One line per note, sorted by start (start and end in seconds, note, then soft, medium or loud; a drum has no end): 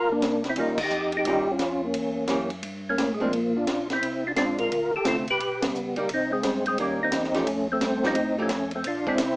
0.00 0.21 A#1 medium
0.00 0.13 A#4 loud
0.12 0.43 A#3 medium
0.12 0.47 D4 loud
0.21 0.55 C2 medium
0.21 snare medium
0.21 hi-hat pedal medium
0.21 ride medium
0.44 snare soft
0.44 ride soft
0.49 0.59 C4 medium
0.49 0.59 E4 medium
0.56 0.90 D#2 medium
0.56 0.77 D#3 medium
0.56 0.77 G3 soft
0.56 0.79 A#3 medium
0.56 0.77 C#4 medium
0.56 0.78 F4 medium
0.56 ride medium
0.60 0.81 D#4 loud
0.78 kick medium
0.78 crash medium
0.83 1.13 D#4 medium
0.83 1.17 G4 loud
0.90 1.25 F2 medium
0.90 hi-hat pedal medium
1.12 ride soft
1.17 1.48 D#4 medium
1.17 1.52 G4 loud
1.25 1.59 G2 medium
1.25 1.46 D#3 medium
1.25 1.46 G3 medium
1.25 1.47 C#4 medium
1.25 1.47 F4 medium
1.25 ride medium
1.51 1.82 C#4 medium
1.51 1.86 F4 medium
1.59 1.93 F2 medium
1.59 snare medium
1.59 hi-hat pedal soft
1.59 ride medium
1.84 2.48 A#3 medium
1.84 2.49 C#4 medium
1.94 2.28 E2 medium
1.94 ride medium
2.27 2.62 F#2 medium
2.27 2.49 E3 medium
2.27 2.50 A#3 medium
2.27 2.50 C#4 medium
2.27 2.50 G4 medium
2.27 snare medium
2.27 hi-hat pedal medium
2.27 ride medium
2.50 ride soft
2.63 2.97 G2 medium
2.63 ride medium
2.89 3.12 A#3 medium
2.89 3.14 C#4 medium
2.97 3.31 A2 medium
2.97 snare medium
2.97 hi-hat pedal medium
2.97 ride medium
3.14 3.22 G#3 medium
3.20 3.54 F3 medium
3.20 3.32 G#3 medium
3.20 3.57 A#3 medium
3.20 3.32 C4 medium
3.20 3.32 D4 medium
3.33 3.66 A#2 medium
3.33 ride medium
3.56 3.88 D4 medium
3.56 3.88 F4 loud
3.67 4.01 A#1 medium
3.67 snare medium
3.67 hi-hat pedal soft
3.67 ride medium
3.90 4.24 C4 medium
3.90 4.27 E4 loud
3.90 snare soft
3.90 ride soft
4.01 4.35 C2 medium
4.01 ride medium
4.27 4.32 D4 medium
4.27 4.32 F4 loud
4.36 4.70 A#1 medium
4.36 4.71 G#3 medium
4.36 4.71 C4 medium
4.36 4.71 D4 medium
4.36 4.58 D4 medium
4.36 4.59 F4 medium
4.36 snare medium
4.36 hi-hat pedal medium
4.36 ride medium
4.58 4.91 F4 medium
4.58 4.94 A#4 loud
4.58 ride soft
4.71 4.91 D2 medium
4.71 ride medium
4.92 4.99 D2 soft
4.92 5.06 A4 loud
4.97 5.07 G4 medium
5.04 5.39 C2 medium
5.04 5.25 D3 medium
5.04 5.25 A3 medium
5.04 5.25 C4 medium
5.04 5.25 F4 medium
5.04 5.17 F4 medium
5.04 5.17 A4 medium
5.04 snare medium
5.04 hi-hat pedal medium
5.04 ride medium
5.27 5.61 G4 medium
5.27 5.64 B4 loud
5.27 ride soft
5.40 5.73 B1 medium
5.40 ride medium
5.62 5.95 G3 medium
5.62 5.98 B3 medium
5.62 snare medium
5.62 ride medium
5.74 6.08 C#2 medium
5.74 hi-hat pedal medium
5.96 6.08 G3 medium
5.96 6.10 G3 medium
5.96 6.08 A#3 medium
5.96 6.10 A#3 medium
5.96 6.08 D#4 medium
5.96 ride soft
6.09 6.43 C2 medium
6.09 ride medium
6.14 6.31 C4 medium
6.14 6.32 D#4 medium
6.32 6.64 G#3 medium
6.32 6.66 C4 medium
6.43 6.77 G2 medium
6.43 snare medium
6.43 hi-hat pedal medium
6.43 ride medium
6.66 6.79 G#3 medium
6.66 6.78 C4 medium
6.66 ride soft
6.78 7.12 D#2 medium
6.78 7.31 G3 medium
6.78 7.31 A#3 medium
6.78 7.00 C#4 medium
6.78 7.31 D#4 medium
6.78 ride medium
6.82 7.01 G3 medium
7.03 7.35 C4 medium
7.03 7.37 D#4 loud
7.12 7.46 E2 medium
7.12 snare medium
7.12 hi-hat pedal medium
7.12 ride medium
7.24 snare soft
7.34 7.46 F3 medium
7.34 7.46 A3 medium
7.34 7.68 A3 medium
7.34 7.68 C#4 loud
7.34 7.46 D#4 medium
7.34 7.46 G4 medium
7.34 snare soft
7.34 ride soft
7.47 7.80 F2 medium
7.47 ride medium
7.72 8.03 A3 medium
7.72 8.05 C4 medium
7.81 8.15 G2 medium
7.81 snare medium
7.81 hi-hat pedal medium
7.81 ride medium
8.03 8.15 F3 medium
8.03 8.15 A3 medium
8.03 8.37 C4 medium
8.03 8.15 D#4 medium
8.03 8.16 G4 medium
8.03 snare medium
8.07 8.38 D#4 loud
8.15 8.49 A2 medium
8.15 ride medium
8.38 8.50 F3 medium
8.38 8.49 A3 medium
8.38 8.72 A3 medium
8.38 8.72 C#4 medium
8.38 8.50 D#4 medium
8.38 8.50 G4 medium
8.49 8.84 F2 medium
8.49 snare medium
8.49 hi-hat pedal soft
8.49 ride medium
8.71 ride soft
8.75 8.85 A3 medium
8.75 8.87 C4 medium
8.84 9.19 A#1 medium
8.84 9.06 D4 medium
8.84 9.09 F4 medium
8.84 ride medium
9.07 9.18 G#3 medium
9.07 9.18 C4 medium
9.07 9.36 C4 medium
9.07 9.18 D4 medium
9.07 9.36 E4 loud
9.07 kick medium
9.18 9.36 C2 medium
9.18 snare medium
9.18 hi-hat pedal medium
9.18 ride medium